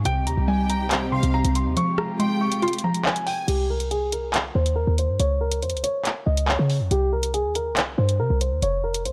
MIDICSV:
0, 0, Header, 1, 7, 480
1, 0, Start_track
1, 0, Tempo, 428571
1, 59, Time_signature, 4, 2, 24, 8
1, 10219, End_track
2, 0, Start_track
2, 0, Title_t, "Violin section"
2, 0, Program_c, 0, 48
2, 540, Note_on_c, 0, 79, 73
2, 1216, Note_off_c, 0, 79, 0
2, 1260, Note_on_c, 0, 77, 87
2, 1488, Note_off_c, 0, 77, 0
2, 2456, Note_on_c, 0, 79, 91
2, 2909, Note_off_c, 0, 79, 0
2, 3660, Note_on_c, 0, 80, 83
2, 3887, Note_off_c, 0, 80, 0
2, 10219, End_track
3, 0, Start_track
3, 0, Title_t, "Grand piano"
3, 0, Program_c, 1, 0
3, 63, Note_on_c, 1, 79, 111
3, 262, Note_off_c, 1, 79, 0
3, 300, Note_on_c, 1, 82, 88
3, 500, Note_off_c, 1, 82, 0
3, 538, Note_on_c, 1, 80, 93
3, 740, Note_off_c, 1, 80, 0
3, 781, Note_on_c, 1, 82, 84
3, 981, Note_off_c, 1, 82, 0
3, 1256, Note_on_c, 1, 84, 82
3, 1458, Note_off_c, 1, 84, 0
3, 1501, Note_on_c, 1, 82, 95
3, 1701, Note_off_c, 1, 82, 0
3, 1742, Note_on_c, 1, 84, 75
3, 1942, Note_off_c, 1, 84, 0
3, 1983, Note_on_c, 1, 85, 115
3, 2182, Note_off_c, 1, 85, 0
3, 2217, Note_on_c, 1, 82, 80
3, 2419, Note_off_c, 1, 82, 0
3, 2459, Note_on_c, 1, 84, 78
3, 2660, Note_off_c, 1, 84, 0
3, 2699, Note_on_c, 1, 85, 80
3, 2900, Note_off_c, 1, 85, 0
3, 2944, Note_on_c, 1, 84, 89
3, 3143, Note_off_c, 1, 84, 0
3, 3182, Note_on_c, 1, 82, 84
3, 3382, Note_off_c, 1, 82, 0
3, 3420, Note_on_c, 1, 80, 86
3, 3620, Note_off_c, 1, 80, 0
3, 3657, Note_on_c, 1, 79, 80
3, 3859, Note_off_c, 1, 79, 0
3, 3892, Note_on_c, 1, 67, 101
3, 4096, Note_off_c, 1, 67, 0
3, 4145, Note_on_c, 1, 70, 81
3, 4343, Note_off_c, 1, 70, 0
3, 4379, Note_on_c, 1, 68, 90
3, 4580, Note_off_c, 1, 68, 0
3, 4623, Note_on_c, 1, 70, 72
3, 4822, Note_off_c, 1, 70, 0
3, 5102, Note_on_c, 1, 72, 85
3, 5301, Note_off_c, 1, 72, 0
3, 5327, Note_on_c, 1, 70, 79
3, 5533, Note_off_c, 1, 70, 0
3, 5587, Note_on_c, 1, 72, 75
3, 5784, Note_off_c, 1, 72, 0
3, 5822, Note_on_c, 1, 73, 101
3, 6022, Note_off_c, 1, 73, 0
3, 6057, Note_on_c, 1, 70, 85
3, 6259, Note_off_c, 1, 70, 0
3, 6301, Note_on_c, 1, 72, 78
3, 6501, Note_off_c, 1, 72, 0
3, 6536, Note_on_c, 1, 73, 91
3, 6738, Note_off_c, 1, 73, 0
3, 7013, Note_on_c, 1, 75, 82
3, 7217, Note_off_c, 1, 75, 0
3, 7264, Note_on_c, 1, 73, 81
3, 7713, Note_off_c, 1, 73, 0
3, 7743, Note_on_c, 1, 67, 104
3, 7942, Note_off_c, 1, 67, 0
3, 7981, Note_on_c, 1, 70, 85
3, 8181, Note_off_c, 1, 70, 0
3, 8219, Note_on_c, 1, 68, 89
3, 8420, Note_off_c, 1, 68, 0
3, 8461, Note_on_c, 1, 70, 80
3, 8661, Note_off_c, 1, 70, 0
3, 8936, Note_on_c, 1, 72, 82
3, 9138, Note_off_c, 1, 72, 0
3, 9179, Note_on_c, 1, 70, 93
3, 9380, Note_off_c, 1, 70, 0
3, 9421, Note_on_c, 1, 72, 70
3, 9621, Note_off_c, 1, 72, 0
3, 9663, Note_on_c, 1, 73, 108
3, 9862, Note_off_c, 1, 73, 0
3, 9897, Note_on_c, 1, 70, 80
3, 10099, Note_off_c, 1, 70, 0
3, 10141, Note_on_c, 1, 72, 76
3, 10219, Note_off_c, 1, 72, 0
3, 10219, End_track
4, 0, Start_track
4, 0, Title_t, "String section"
4, 0, Program_c, 2, 48
4, 60, Note_on_c, 2, 48, 86
4, 60, Note_on_c, 2, 55, 80
4, 60, Note_on_c, 2, 63, 77
4, 60, Note_on_c, 2, 67, 94
4, 1960, Note_off_c, 2, 55, 0
4, 1960, Note_off_c, 2, 63, 0
4, 1960, Note_off_c, 2, 67, 0
4, 1979, Note_on_c, 2, 65, 76
4, 1979, Note_on_c, 2, 67, 95
4, 1980, Note_on_c, 2, 56, 77
4, 3861, Note_off_c, 2, 48, 0
4, 3880, Note_off_c, 2, 56, 0
4, 3880, Note_off_c, 2, 65, 0
4, 3880, Note_off_c, 2, 67, 0
4, 10219, End_track
5, 0, Start_track
5, 0, Title_t, "Synth pluck"
5, 0, Program_c, 3, 84
5, 61, Note_on_c, 3, 48, 98
5, 536, Note_on_c, 3, 55, 94
5, 1019, Note_on_c, 3, 72, 104
5, 1244, Note_off_c, 3, 48, 0
5, 1257, Note_on_c, 3, 48, 79
5, 1738, Note_off_c, 3, 55, 0
5, 1978, Note_off_c, 3, 48, 0
5, 1978, Note_on_c, 3, 53, 96
5, 1979, Note_off_c, 3, 72, 0
5, 2459, Note_on_c, 3, 56, 99
5, 2939, Note_on_c, 3, 65, 97
5, 3167, Note_off_c, 3, 53, 0
5, 3181, Note_on_c, 3, 53, 72
5, 3659, Note_off_c, 3, 56, 0
5, 3899, Note_off_c, 3, 65, 0
5, 3900, Note_off_c, 3, 53, 0
5, 10219, End_track
6, 0, Start_track
6, 0, Title_t, "808-style bass"
6, 0, Program_c, 4, 38
6, 58, Note_on_c, 4, 36, 108
6, 299, Note_on_c, 4, 39, 103
6, 316, Note_off_c, 4, 36, 0
6, 413, Note_off_c, 4, 39, 0
6, 418, Note_on_c, 4, 36, 104
6, 1340, Note_off_c, 4, 36, 0
6, 1378, Note_on_c, 4, 36, 104
6, 1609, Note_off_c, 4, 36, 0
6, 1619, Note_on_c, 4, 36, 102
6, 1858, Note_on_c, 4, 39, 99
6, 1875, Note_off_c, 4, 36, 0
6, 1973, Note_off_c, 4, 39, 0
6, 3898, Note_on_c, 4, 36, 110
6, 5054, Note_off_c, 4, 36, 0
6, 5098, Note_on_c, 4, 39, 102
6, 5444, Note_off_c, 4, 39, 0
6, 5458, Note_on_c, 4, 39, 105
6, 5699, Note_on_c, 4, 43, 95
6, 5715, Note_off_c, 4, 39, 0
6, 5813, Note_off_c, 4, 43, 0
6, 5819, Note_on_c, 4, 37, 105
6, 6299, Note_on_c, 4, 41, 99
6, 6316, Note_off_c, 4, 37, 0
6, 6419, Note_on_c, 4, 37, 100
6, 6436, Note_off_c, 4, 41, 0
6, 6533, Note_off_c, 4, 37, 0
6, 7019, Note_on_c, 4, 37, 103
6, 7365, Note_off_c, 4, 37, 0
6, 7379, Note_on_c, 4, 49, 103
6, 7620, Note_on_c, 4, 41, 97
6, 7637, Note_off_c, 4, 49, 0
6, 7733, Note_off_c, 4, 41, 0
6, 7739, Note_on_c, 4, 36, 106
6, 8339, Note_on_c, 4, 39, 100
6, 8356, Note_off_c, 4, 36, 0
6, 8639, Note_on_c, 4, 36, 98
6, 8656, Note_off_c, 4, 39, 0
6, 8924, Note_off_c, 4, 36, 0
6, 8939, Note_on_c, 4, 43, 105
6, 9179, Note_on_c, 4, 48, 99
6, 9196, Note_off_c, 4, 43, 0
6, 9293, Note_off_c, 4, 48, 0
6, 9298, Note_on_c, 4, 36, 103
6, 9538, Note_on_c, 4, 39, 98
6, 9555, Note_off_c, 4, 36, 0
6, 9653, Note_off_c, 4, 39, 0
6, 9659, Note_on_c, 4, 29, 103
6, 10139, Note_on_c, 4, 36, 98
6, 10155, Note_off_c, 4, 29, 0
6, 10219, Note_off_c, 4, 36, 0
6, 10219, End_track
7, 0, Start_track
7, 0, Title_t, "Drums"
7, 59, Note_on_c, 9, 42, 87
7, 171, Note_off_c, 9, 42, 0
7, 300, Note_on_c, 9, 42, 92
7, 412, Note_off_c, 9, 42, 0
7, 779, Note_on_c, 9, 42, 81
7, 891, Note_off_c, 9, 42, 0
7, 1019, Note_on_c, 9, 42, 76
7, 1020, Note_on_c, 9, 39, 116
7, 1131, Note_off_c, 9, 42, 0
7, 1132, Note_off_c, 9, 39, 0
7, 1378, Note_on_c, 9, 42, 72
7, 1490, Note_off_c, 9, 42, 0
7, 1619, Note_on_c, 9, 42, 78
7, 1731, Note_off_c, 9, 42, 0
7, 1739, Note_on_c, 9, 42, 80
7, 1851, Note_off_c, 9, 42, 0
7, 1979, Note_on_c, 9, 42, 85
7, 2091, Note_off_c, 9, 42, 0
7, 2218, Note_on_c, 9, 37, 108
7, 2330, Note_off_c, 9, 37, 0
7, 2461, Note_on_c, 9, 42, 79
7, 2573, Note_off_c, 9, 42, 0
7, 2818, Note_on_c, 9, 42, 75
7, 2930, Note_off_c, 9, 42, 0
7, 2939, Note_on_c, 9, 42, 44
7, 2999, Note_off_c, 9, 42, 0
7, 2999, Note_on_c, 9, 42, 53
7, 3059, Note_off_c, 9, 42, 0
7, 3059, Note_on_c, 9, 42, 66
7, 3119, Note_off_c, 9, 42, 0
7, 3119, Note_on_c, 9, 42, 76
7, 3231, Note_off_c, 9, 42, 0
7, 3298, Note_on_c, 9, 42, 69
7, 3410, Note_off_c, 9, 42, 0
7, 3419, Note_on_c, 9, 39, 118
7, 3531, Note_off_c, 9, 39, 0
7, 3539, Note_on_c, 9, 42, 77
7, 3651, Note_off_c, 9, 42, 0
7, 3659, Note_on_c, 9, 46, 56
7, 3771, Note_off_c, 9, 46, 0
7, 3899, Note_on_c, 9, 42, 84
7, 3899, Note_on_c, 9, 49, 94
7, 4011, Note_off_c, 9, 42, 0
7, 4011, Note_off_c, 9, 49, 0
7, 4257, Note_on_c, 9, 42, 79
7, 4369, Note_off_c, 9, 42, 0
7, 4381, Note_on_c, 9, 42, 70
7, 4493, Note_off_c, 9, 42, 0
7, 4619, Note_on_c, 9, 42, 84
7, 4731, Note_off_c, 9, 42, 0
7, 4859, Note_on_c, 9, 42, 74
7, 4860, Note_on_c, 9, 39, 109
7, 4971, Note_off_c, 9, 42, 0
7, 4972, Note_off_c, 9, 39, 0
7, 5218, Note_on_c, 9, 42, 66
7, 5330, Note_off_c, 9, 42, 0
7, 5579, Note_on_c, 9, 42, 75
7, 5691, Note_off_c, 9, 42, 0
7, 5819, Note_on_c, 9, 42, 80
7, 5931, Note_off_c, 9, 42, 0
7, 6177, Note_on_c, 9, 42, 79
7, 6289, Note_off_c, 9, 42, 0
7, 6299, Note_on_c, 9, 42, 61
7, 6379, Note_off_c, 9, 42, 0
7, 6379, Note_on_c, 9, 42, 61
7, 6459, Note_off_c, 9, 42, 0
7, 6459, Note_on_c, 9, 42, 57
7, 6539, Note_off_c, 9, 42, 0
7, 6539, Note_on_c, 9, 42, 84
7, 6651, Note_off_c, 9, 42, 0
7, 6779, Note_on_c, 9, 42, 73
7, 6780, Note_on_c, 9, 39, 66
7, 6891, Note_off_c, 9, 42, 0
7, 6892, Note_off_c, 9, 39, 0
7, 7138, Note_on_c, 9, 42, 69
7, 7250, Note_off_c, 9, 42, 0
7, 7260, Note_on_c, 9, 39, 114
7, 7372, Note_off_c, 9, 39, 0
7, 7500, Note_on_c, 9, 46, 54
7, 7612, Note_off_c, 9, 46, 0
7, 7740, Note_on_c, 9, 42, 82
7, 7852, Note_off_c, 9, 42, 0
7, 8098, Note_on_c, 9, 42, 83
7, 8210, Note_off_c, 9, 42, 0
7, 8221, Note_on_c, 9, 42, 72
7, 8333, Note_off_c, 9, 42, 0
7, 8459, Note_on_c, 9, 42, 85
7, 8571, Note_off_c, 9, 42, 0
7, 8699, Note_on_c, 9, 42, 74
7, 8700, Note_on_c, 9, 39, 108
7, 8811, Note_off_c, 9, 42, 0
7, 8812, Note_off_c, 9, 39, 0
7, 9058, Note_on_c, 9, 42, 66
7, 9170, Note_off_c, 9, 42, 0
7, 9419, Note_on_c, 9, 42, 76
7, 9531, Note_off_c, 9, 42, 0
7, 9659, Note_on_c, 9, 42, 81
7, 9771, Note_off_c, 9, 42, 0
7, 10017, Note_on_c, 9, 42, 80
7, 10129, Note_off_c, 9, 42, 0
7, 10141, Note_on_c, 9, 42, 72
7, 10219, Note_off_c, 9, 42, 0
7, 10219, End_track
0, 0, End_of_file